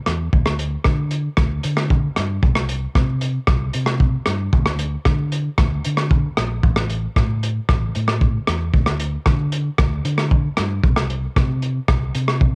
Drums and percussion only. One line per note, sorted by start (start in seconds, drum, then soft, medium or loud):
0.06 cross-stick medium
0.06 closed hi-hat medium
0.33 kick loud
0.46 cross-stick medium
0.59 closed hi-hat medium
0.84 kick medium
0.84 cross-stick medium
1.11 closed hi-hat soft
1.37 kick medium
1.37 cross-stick medium
1.64 closed hi-hat medium
1.77 cross-stick medium
1.90 kick loud
2.16 cross-stick medium
2.16 closed hi-hat soft
2.43 kick loud
2.55 cross-stick medium
2.69 closed hi-hat medium
2.95 kick medium
2.95 cross-stick medium
3.21 closed hi-hat soft
3.47 kick loud
3.47 cross-stick medium
3.74 closed hi-hat medium
3.86 cross-stick medium
4.00 kick medium
4.26 cross-stick medium
4.26 closed hi-hat medium
4.53 kick loud
4.66 cross-stick medium
4.79 closed hi-hat medium
5.05 kick medium
5.05 cross-stick medium
5.32 closed hi-hat soft
5.58 kick loud
5.58 cross-stick medium
5.85 closed hi-hat medium
5.97 cross-stick medium
6.11 kick loud
6.37 cross-stick medium
6.37 closed hi-hat soft
6.63 kick loud
6.76 cross-stick medium
6.90 closed hi-hat soft
7.16 kick medium
7.16 cross-stick medium
7.43 closed hi-hat soft
7.69 kick loud
7.69 cross-stick medium
7.95 closed hi-hat soft
8.08 cross-stick medium
8.21 kick medium
8.47 cross-stick medium
8.47 closed hi-hat soft
8.74 kick medium
8.86 cross-stick medium
9.00 closed hi-hat medium
9.26 kick medium
9.26 cross-stick medium
9.52 closed hi-hat medium
9.78 kick loud
9.78 cross-stick medium
10.05 closed hi-hat medium
10.18 cross-stick medium
10.31 kick loud
10.57 cross-stick medium
10.57 closed hi-hat soft
10.83 kick loud
10.96 cross-stick medium
11.10 closed hi-hat medium
11.36 kick medium
11.36 cross-stick medium
11.62 closed hi-hat soft
11.88 kick loud
11.88 cross-stick medium
12.14 closed hi-hat medium
12.28 cross-stick medium
12.41 kick loud